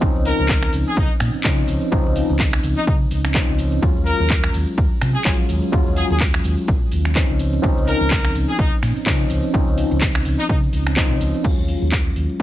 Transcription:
0.01 F3 C4 C#4 D#4, kick, closed hi-hat, cabasa
0.15 C#2, cabasa
0.25 A#4, open hi-hat, ride, cabasa
0.39 C#2, closed hi-hat, cabasa
0.49 kick, clap, closed hi-hat, cabasa
0.63 finger snap, closed hi-hat, cabasa
0.73 C#2, open hi-hat, ride, cabasa
0.86 G#4, closed hi-hat, cabasa
0.96 C#2 D#4, kick, closed hi-hat, cabasa
1.20 A#2, finger snap, open hi-hat, ride, cabasa
1.34 muted fingered electric bass stroke, closed hi-hat, cabasa
1.44 C#3 F3 C4 C#4 D#4, kick, clap, closed hi-hat, cabasa
1.58 cabasa
1.68 C#2, open hi-hat, ride, cabasa
1.82 closed hi-hat, cabasa
1.91 C#2 F3 C4 C#4 D#4, kick, closed hi-hat, cabasa
2.05 C#2, cabasa
2.16 open hi-hat, ride, cabasa
2.29 C#2, closed hi-hat, cabasa
2.39 kick, clap, closed hi-hat, cabasa
2.53 finger snap, closed hi-hat, cabasa
2.63 C#2, open hi-hat, ride, cabasa
2.77 D#4, closed hi-hat, cabasa
2.87 C#3 D#4, kick, closed hi-hat, cabasa
3.11 C#2, open hi-hat, ride, cabasa
3.25 finger snap, closed hi-hat, cabasa
3.34 F3 C4 C#4 D#4, kick, clap, closed hi-hat, cabasa
3.48 C#2, cabasa
3.59 open hi-hat, ride, cabasa
3.72 closed hi-hat, cabasa
3.82 D#2 F#3 G#3 C#4 F4, kick, closed hi-hat, cabasa
3.96 D#2, cabasa
4.06 A#4, open hi-hat, ride, cabasa
4.20 D#2, closed hi-hat, cabasa
4.30 kick, clap, closed hi-hat, cabasa
4.44 finger snap, closed hi-hat, cabasa
4.54 D#2, open hi-hat, ride, cabasa
4.67 closed hi-hat, cabasa
4.78 D#2, kick, closed hi-hat, cabasa
5.01 C3, finger snap, open hi-hat, ride, cabasa
5.15 G#4, muted fingered electric bass stroke, closed hi-hat, cabasa
5.25 A#1 F#3 G#3 C#4 F4 G#4, kick, clap, closed hi-hat, cabasa
5.39 cabasa
5.49 D#2, open hi-hat, ride, cabasa
5.62 closed hi-hat, cabasa
5.72 D#2 F#3 G#3 C#4 F4, kick, closed hi-hat, cabasa
5.86 D#2, cabasa
5.96 G#4, open hi-hat, ride, cabasa
6.10 D#2 G#4, closed hi-hat, cabasa
6.20 kick, clap, closed hi-hat, cabasa
6.34 finger snap, closed hi-hat, cabasa
6.44 D#2, open hi-hat, ride, cabasa
6.58 closed hi-hat, cabasa
6.68 A#1, kick, closed hi-hat, cabasa
6.92 D#2, open hi-hat, ride, cabasa
7.05 finger snap, closed hi-hat, cabasa
7.15 F3 C4 C#4 D#4, kick, clap, closed hi-hat, cabasa
7.29 C#2, cabasa
7.39 open hi-hat, ride, cabasa
7.53 closed hi-hat, cabasa
7.62 C#2 F3 C4 C#4 D#4, kick, closed hi-hat, cabasa
7.77 C#2, cabasa
7.87 A#4, open hi-hat, ride, cabasa
8.01 C#2, closed hi-hat, cabasa
8.11 kick, clap, closed hi-hat, cabasa
8.25 finger snap, closed hi-hat, cabasa
8.35 C#2, open hi-hat, ride, cabasa
8.49 G#4, closed hi-hat, cabasa
8.59 C#2 D#4, kick, closed hi-hat, cabasa
8.83 A#2, finger snap, open hi-hat, ride, cabasa
8.96 muted fingered electric bass stroke, closed hi-hat, cabasa
9.06 C#3 F3 C4 C#4 D#4, kick, clap, closed hi-hat, cabasa
9.20 cabasa
9.30 C#2, open hi-hat, ride, cabasa
9.43 closed hi-hat, cabasa
9.53 C#2 F3 C4 C#4 D#4, kick, closed hi-hat, cabasa
9.67 C#2, closed hi-hat, cabasa
9.78 open hi-hat, ride, cabasa
9.91 C#2, closed hi-hat, cabasa
10.01 kick, clap, closed hi-hat, cabasa
10.15 finger snap, closed hi-hat, cabasa
10.25 C#2, open hi-hat, ride, cabasa
10.39 D#4, closed hi-hat, cabasa
10.49 C#3 D#4, kick, closed hi-hat, cabasa
10.63 closed hi-hat, cabasa
10.73 C#2, open hi-hat, ride, cabasa
10.87 finger snap, closed hi-hat, cabasa
10.96 F3 C4 C#4 D#4, kick, clap, closed hi-hat, cabasa
11.10 C#3, cabasa
11.20 C#2, open hi-hat, ride, cabasa
11.34 closed hi-hat, cabasa
11.44 D#2 F#3 G#3 C#4 F4, kick, closed hi-hat, crash
11.58 D#2
11.68 open hi-hat
11.82 D#2, closed hi-hat
11.92 kick, clap, closed hi-hat
12.06 closed hi-hat
12.16 D#2, open hi-hat
12.29 closed hi-hat

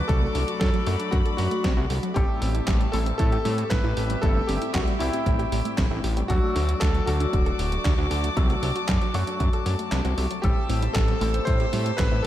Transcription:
Already playing: F#4 D5 D6
0.08 C2 F#3 A3 D4 A4 B5, kick, closed hi-hat
0.22 A3
0.35 C2 D4, open hi-hat
0.48 F#4, closed hi-hat
0.59 F#2 A4, kick, snare, closed hi-hat
0.74 F#3, closed hi-hat
0.86 F#2 F#3 A3 D4 F#4, open hi-hat
0.99 D4, closed hi-hat
1.11 F#2 F#4, kick, closed hi-hat
1.25 A4, closed hi-hat
1.37 F#2 F#3 F#4, open hi-hat
1.51 A3, closed hi-hat
1.64 C2 D4, kick, snare, closed hi-hat
1.77 C2 F#4
1.90 C2 A4, open hi-hat
2.03 F#3, closed hi-hat
2.14 A1 A2 G3 C4 E4 G4 A4 E5 A5, kick, closed hi-hat
2.29 A3
2.42 A1 C4, open hi-hat
2.55 E4, closed hi-hat
2.67 A1 G4, kick, snare, clap, closed hi-hat
2.80 G3, closed hi-hat
2.92 A1 A2 G3 A3 C4 E4 A4, open hi-hat
3.06 C4, closed hi-hat
3.18 A2 E4 A4, kick, closed hi-hat
3.32 G4, closed hi-hat
3.45 A2 G3, open hi-hat
3.58 A3, closed hi-hat
3.70 A1 C4 B4, kick, snare, clap, closed hi-hat
3.84 A1 E4
3.97 A1 G4, open hi-hat
4.10 G3, closed hi-hat
4.22 G1 A2 G3 C4 E4 A4 G5, kick, closed hi-hat
4.36 A3
4.47 G1 C4 G4, open hi-hat
4.62 E4, closed hi-hat
4.73 C2 F#4 G4, kick, snare, clap, closed hi-hat
4.88 G3, closed hi-hat
4.99 C2 A2 G3 A3 C4 E4 G4, open hi-hat
5.13 C4, closed hi-hat
5.26 A1 E4, kick, closed hi-hat
5.39 G4, closed hi-hat
5.52 A1 G3, open hi-hat
5.65 A3, closed hi-hat
5.78 A1 C4, kick, snare, clap, closed hi-hat
5.91 A1 E4
6.04 A1 G4, open hi-hat
6.17 G3, closed hi-hat
6.28 D2 F#3 A3 D4 F#4 A4 D5 A5 D6, kick, closed hi-hat
6.43 A3
6.56 D2 D4, open hi-hat
6.68 F#4, closed hi-hat
6.80 D2 A4, kick, snare, clap, closed hi-hat
6.94 F#3, closed hi-hat
7.06 D2 F#3 A3 D4 F#4 A4, open hi-hat
7.20 D4, closed hi-hat
7.33 D1 F#4, kick, closed hi-hat
7.46 A4, closed hi-hat
7.59 D1 F#3, open hi-hat
7.72 A3, closed hi-hat
7.85 D2 D4, kick, snare, clap, closed hi-hat
7.98 D2 F#4
8.11 D2 A4, open hi-hat
8.24 F#3, closed hi-hat
8.36 C2 F#3 A3 D4 A4, kick, closed hi-hat
8.50 A3, closed hi-hat
8.62 C2 D4, open hi-hat
8.76 F#4, closed hi-hat
8.88 F#2 A4, kick, snare, clap, closed hi-hat
9.01 F#3, closed hi-hat
9.14 F#2 F#3 A3 D4 F#4, open hi-hat
9.27 D4, closed hi-hat
9.40 F#2 F#4, kick, closed hi-hat
9.53 A4, closed hi-hat
9.66 F#2 F#3, open hi-hat
9.79 A3, closed hi-hat
9.92 C2 D4, snare, clap, closed hi-hat
10.05 C2 F#4, closed hi-hat
10.17 C2 A4, open hi-hat
10.31 F#3, closed hi-hat
10.42 A1 A2 G3 C4 E4 G4 A4 C5 E6, kick, closed hi-hat
10.57 A3
10.69 A1 C4, open hi-hat
10.82 E4, closed hi-hat
10.93 A1 G4 A4, kick, snare, clap, closed hi-hat
11.08 G3, closed hi-hat
11.21 A1 A2 G3 A3 C4 E4 A4, open hi-hat
11.34 C4, closed hi-hat
11.45 A2 E4 C5, kick, closed hi-hat
11.60 G4, closed hi-hat
11.73 A2 G3, open hi-hat
11.86 A3, closed hi-hat
11.97 A1 C4 B4, kick, snare, clap, closed hi-hat
12.12 A1 E4
12.23 A4

